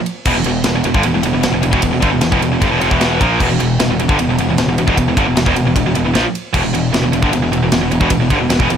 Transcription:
0.06 ride
0.25 E1 E2 B2, kick, crash
0.36 E1 E2 B2
0.44 E1 E2 B2, ride
0.64 E1 E2 B2, snare, ride
0.75 E1 E2 B2
0.84 E1 E2 B2, ride
0.94 G1 G2 D3, kick
1.03 E1 E2 B2, ride
1.14 E1 E2 B2
1.23 E1 E2 B2, ride
1.33 E1 E2 B2
1.41 E2 B2, snare, ride
1.45 E1
1.52 E1 E2 B2
1.62 E1 E2 B2, ride
1.71 E1 E2 B2, kick
1.81 E1 E2 B2, kick, ride
1.91 E1 E2 B2
2.01 G1 G2 D3, kick, ride
2.11 E1 E2 B2
2.21 E1 E2 B2, snare, ride
2.31 E1 E2 B2, kick
2.41 E1 E2 B2, ride
2.52 E1 E2 B2
2.60 G1 G2 D3, kick, ride
2.70 E1 E2 B2
2.81 F1 F2 C3, ride
2.91 E1 E2 B2 E3, kick
3.01 snare, ride
3.21 A#1 A#2 F3 A#3, kick, ride
3.40 E1 E2 B2, kick, crash
3.50 E1 E2 B2
3.59 E1 E2 B2, ride
3.80 E1 E2 B2, snare, ride
3.90 E1 E2 B2
4.00 E1 E2 B2, ride
4.08 G1 G2 D3, kick
4.19 E1 E2 B2, ride
4.29 E1 E2 B2
4.38 E1 E2 B2, ride
4.48 E1 E2 B2
4.58 E1 E2 B2, snare, ride
4.68 E1 E2 B2
4.78 E1 E2 B2, ride
4.87 E1 E2 B2, kick
4.97 E1 E2 B2, kick, ride
5.08 E1 E2 B2
5.17 G1 G2 D3, kick, ride
5.26 E1 E2 B2
5.36 E1 E2 B2, snare, ride
5.45 E1 E2 B2, kick
5.55 E1 E2 B2, ride
5.65 E1 E2 B2
5.76 E1 E2 B2, kick, ride
5.87 E1 E2 B2
5.95 E1 E2 B2, ride
6.06 E1 E2 B2
6.15 A#1 A#2 F3, snare, ride
6.35 ride
6.54 E1 E2 B2, kick, crash
6.64 E1 E2 B2
6.73 E1 E2 B2, ride
6.93 E1 E2 B2, snare, ride
7.04 E1 E2 B2
7.13 E1 E2 B2, ride
7.23 G1 G2 D3, kick
7.33 E1 E2 B2, ride
7.43 E1 E2 B2
7.52 E1 E2 B2, ride
7.62 E1 E2 B2
7.72 E1 E2 B2, snare, ride
7.81 E1 E2 B2
7.91 E1 E2 B2, ride
8.01 E1 E2 B2, kick
8.10 E1 E2 B2, kick, ride
8.20 E1 E2 B2
8.30 G1 G2 D3, kick, ride
8.40 E1 E2 B2
8.49 E1 E2 B2, snare, ride
8.60 E1 E2 B2, kick
8.70 E1 E2 B2, ride

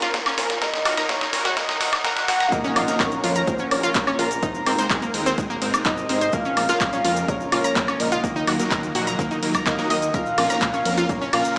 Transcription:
Already playing: C#3 F3 A#3 C#4 F4 A#4, riser
0.02 F4, snare, closed hi-hat
0.14 A#1 A#3, kick, snare, closed hi-hat
0.26 C#4, snare, high woodblock
0.38 A#1 F3 A#3 C#4 F4 A#4, snare, open hi-hat
0.50 snare, closed hi-hat
0.62 D#2 D#3 A#3 F#4 A#4 D#5, kick, snare, closed hi-hat
0.74 snare
0.85 D#2 F#3 A#3 D#4 F#4 A#4, snare, open hi-hat, high woodblock
0.97 F#3 A#3 D#4 A#4 A#5, snare, closed hi-hat
1.09 D#2 A#3 C#5, kick, snare, closed hi-hat
1.21 D#4, snare, closed hi-hat
1.33 A#1 F#3 A#3 D#4 A#4, snare, open hi-hat
1.45 F#4, snare, closed hi-hat
1.57 D#2 A#3 D#5, kick, snare, closed hi-hat, swell
1.69 D#4, snare, closed hi-hat
1.81 D#1 F#3 A#3 D#4 F#4 A#4 D#5, snare, open hi-hat
1.93 kick, snare, closed hi-hat, high woodblock
2.05 A#1 A#4 F#5, kick, snare, closed hi-hat
2.17 snare, closed hi-hat
2.28 D#2 F#3 A#3 D#4 F#4 A#4, snare, open hi-hat
2.40 A#5, snare, closed hi-hat
2.52 A#1 C#3 A#3 F4 A#4 D#5, kick, closed hi-hat, impact, shaker
2.64 C#4, shaker
2.76 A#1 F3 A#3 C#4 F4 A#4, open hi-hat, high woodblock
2.88 F3 A#3 C#4 A#4, closed hi-hat, shaker
3.00 A#1 A#4 C#5, kick, clap, closed hi-hat, shaker
3.12 closed hi-hat, shaker
3.24 F2 F3 A#3 C#4 F4 A#4, open hi-hat
3.35 A#5, closed hi-hat, shaker
3.47 A#1 A#3 C5, kick, closed hi-hat, shaker
3.59 C#4, shaker
3.71 A#1 F3 A#3 C#4 A#4 C#5, open hi-hat, high woodblock
3.83 F4, closed hi-hat, shaker
3.94 A#1 A#3, kick, clap, closed hi-hat, shaker
4.07 C#4, high woodblock, shaker
4.19 A#1 F3 A#3 C#4 F4 A#4 A#5, open hi-hat
4.31 closed hi-hat, shaker
4.43 G#1 C3 G#3 D#4, kick, closed hi-hat, shaker
4.54 shaker
4.66 G#1 G#3 C4 D#4 A#4, open hi-hat, high woodblock
4.78 G#3 C4 D#4 A#4 C5, closed hi-hat, shaker
4.90 G#1 G#3, kick, clap, closed hi-hat, shaker
5.02 A#3, closed hi-hat, shaker
5.14 D#2 G#3 C4 D#4 A#4, open hi-hat
5.26 C4, closed hi-hat, shaker
5.38 G#1 G#3, kick, closed hi-hat, shaker
5.50 A#3, shaker
5.62 G#1 G#3 C4 D#4 A#4, open hi-hat
5.74 closed hi-hat, high woodblock, shaker
5.85 G#1 D#4 D#5, kick, clap, closed hi-hat, shaker
5.97 shaker
6.09 G#1 G#3 C4 D#4 A#4, open hi-hat
6.21 C5, closed hi-hat, shaker
6.33 A#1 C#3 A#3 F4 F5, kick, closed hi-hat, shaker
6.45 C#4, shaker
6.57 A#1 F3 A#3 C#4 A#4, open hi-hat, high woodblock
6.69 F3 A#3 C#4 F4 A#4, closed hi-hat, shaker
6.80 A#1 A#3 F5, kick, clap, closed hi-hat, shaker
6.93 C#4, closed hi-hat, shaker
7.05 F2 F3 A#3 C#4 F4 A#4, open hi-hat
7.16 closed hi-hat, shaker
7.28 A#1 A#4 C#5, kick, closed hi-hat, shaker
7.40 shaker
7.52 A#1 F3 A#3 C#4 F4 A#4 C#5, open hi-hat, high woodblock
7.64 A#5, closed hi-hat, shaker
7.76 A#1 A#3, kick, clap, closed hi-hat, shaker
7.88 C#4, high woodblock, shaker
8.00 A#1 F3 A#3 C#4 A#4 D#5, open hi-hat
8.12 F4, closed hi-hat, shaker
8.24 D#2 D#3 A#3 F#4, kick, closed hi-hat, shaker
8.36 D#4, shaker
8.47 D#2 F#3 A#3 D#4 F#4 A#4, open hi-hat, high woodblock
8.59 F#3 A#3 D#4 A#4, closed hi-hat, shaker
8.71 D#2 A#4, kick, clap, closed hi-hat, shaker
8.83 closed hi-hat, shaker
8.95 A#1 F#3 A#3 D#4 F#4 A#4, open hi-hat
9.07 A#5, closed hi-hat, shaker
9.19 D#2 A#3, kick, closed hi-hat, shaker
9.31 D#4, closed hi-hat, shaker
9.43 D#2 F#3 A#3 D#4 A#4, open hi-hat
9.54 A#5, kick, closed hi-hat, high woodblock, shaker
9.66 D#2 A#3 D#5, kick, clap, closed hi-hat, shaker
9.79 F#3 A#3 D#4 A#4, shaker
9.90 D#2 F#3 A#3 D#4 A#4 D#5, open hi-hat
10.02 closed hi-hat, shaker
10.14 A#1 C#3 F4 A#4 F5, kick, closed hi-hat, shaker
10.26 shaker
10.38 A#1 F3 A#3 C#4 F4 A#4, open hi-hat, ride, high woodblock
10.50 F3 A#3 C#4 A#4 A#5, closed hi-hat, shaker
10.61 A#1 A#3 F5, kick, clap, closed hi-hat, shaker
10.74 C#4, closed hi-hat, shaker
10.85 F2 F3 A#3 C#4 A#4, open hi-hat, ride
10.98 F4, closed hi-hat, shaker
11.09 A#1 A#3 C#5, kick, closed hi-hat, shaker
11.21 C#4, shaker
11.33 A#1 F3 A#3 C#4 F4 A#4 F5, open hi-hat, ride, high woodblock
11.45 closed hi-hat, shaker

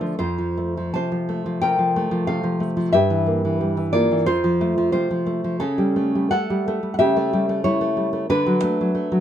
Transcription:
Already playing: D3 A3 F4 D5
0.01 F3
0.19 F2 F4 C5
0.38 F3
0.57 A3
0.77 F3
0.94 C3 C5 A5
1.12 F3
1.29 A3
1.46 F3
1.61 C3 A#4 G5
1.79 F3
1.96 A3
2.11 F3
2.27 C3 A4 F5
2.43 F3
2.60 A3
2.77 F3
2.93 G2 G4 E5
3.10 E3
3.26 A#3
3.45 E3
3.61 G3
3.77 E3
3.93 A#3 F4 D5
4.12 E3
4.26 F2 F4 C5
4.44 F3
4.61 A3
4.78 F3
4.92 C3 F4 C5
5.11 F3
5.26 A3
5.44 F3
5.60 C#3 C#4 A4
5.78 G3
5.96 A3
6.15 G3
6.31 A3 A4 F#5
6.50 G3
6.68 A3
6.83 G3
6.94 F#5
6.99 C#3 G4 E5
7.17 A3
7.33 G3
7.49 A3
7.64 G3 E4 C#5
7.81 A3
7.97 G3
8.13 A3
8.30 D3 D4 B4
8.46 F#3
8.63 A3
8.81 F#3
8.95 A3
9.12 F#3

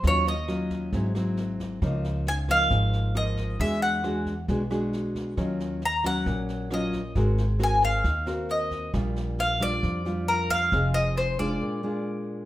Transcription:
0.03 D#2 D#3 F#3 C#4 F4, kick, snare
0.07 C#5
0.26 D#5, snare
0.48 F#3 C#4 F4, cross-stick, snare
0.70 kick, snare
0.93 G#1 G#2 F#3 C4 E4, kick, snare
1.15 F#3 C4 E4, cross-stick, snare
1.37 snare
1.60 kick, snare
1.82 C#2 C#3 F3 A#3 D#4, kick, cross-stick, snare
2.04 snare
2.26 G#5, snare
2.48 F3 A#3 D#4 F5, kick, cross-stick, snare
2.71 G#1 G#2, kick, snare
2.93 snare
3.15 F3 A#3 D#4 D#5, cross-stick, snare
3.37 kick, snare
3.59 E2 E3 G#3 D4 F#4 E5, kick, snare
3.82 F#5, snare
4.04 G#3 D4 F#4, cross-stick, snare
4.26 kick, snare
4.48 B1 B2 G#3 D4 F#4, kick, snare
4.70 G#3 D4 F#4, cross-stick, snare
4.93 snare
5.15 kick, snare
5.37 D#2 D#3 F#3 C#4 F4, kick, cross-stick, snare
5.60 snare
5.82 A#5, snare
6.04 F#3 C#4 F#5, kick, cross-stick, snare
6.26 A#1 A#2, kick, snare
6.49 snare
6.71 F#3 C#4 F4 D#5, cross-stick, snare
6.93 kick, snare
7.15 G#1 G#3 C4 F#4 A#4, kick, snare
7.38 snare
7.59 C4 F#4 A#4, cross-stick, snare
7.63 G#5
7.82 F5, kick, snare
8.04 D#2 D#3, kick, snare
8.26 C4 F#4 A#4, cross-stick, snare
8.49 D#5, snare
8.71 kick, snare
8.94 A#1 A#2 G3 D4 F4, kick, cross-stick, snare
9.16 snare
9.39 F5, snare
9.60 G3 D4 F4 D5, kick, cross-stick, snare
9.83 F2 F3, kick, snare
10.05 G3 D4 F4, snare
10.28 A#4, cross-stick, snare
10.50 F5, kick, snare
10.72 F1 F3 C4 D#4 G#4, kick, snare
10.94 D#5, snare
11.17 C5, cross-stick, snare
11.39 G#3 D4 F4 D5, kick, snare
11.61 A#2
11.83 G#3 D4 F4

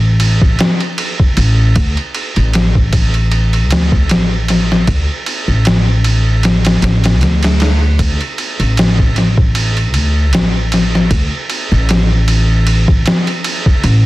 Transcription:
Already playing: A1
0.20 ride
0.42 kick
0.59 snare, ride
0.80 ride
0.98 ride
1.20 kick
1.37 A1, ride
1.76 D2, kick, ride
1.97 ride
2.15 ride
2.36 A1, ride
2.53 snare, ride
2.75 kick
2.93 kick, ride
3.14 ride
3.32 ride
3.53 ride
3.70 D2, snare, ride
3.92 kick
4.09 A1, snare, ride
4.48 snare, ride
4.72 snare
4.87 D2, kick, ride
5.26 ride
5.48 A1
5.65 snare, ride
6.04 ride
6.43 snare, ride
6.65 snare, ride
6.82 A1, snare, ride
7.04 snare, ride
7.21 D2, snare, ride
7.43 snare, ride
7.60 snare, ride
7.99 D2, kick, ride
8.21 ride
8.38 ride
8.60 A1, ride
8.77 snare, ride
8.99 kick
9.16 snare, ride
9.38 kick
9.55 ride
9.77 ride
9.94 D2, ride
10.33 A1, snare, ride
10.72 snare, ride
10.95 snare
11.11 D2, kick, ride
11.50 ride
11.72 A1
11.89 snare, ride
12.28 ride
12.67 ride
12.88 kick
13.06 snare, ride
13.27 ride
13.44 ride
13.66 kick
13.84 A1, ride

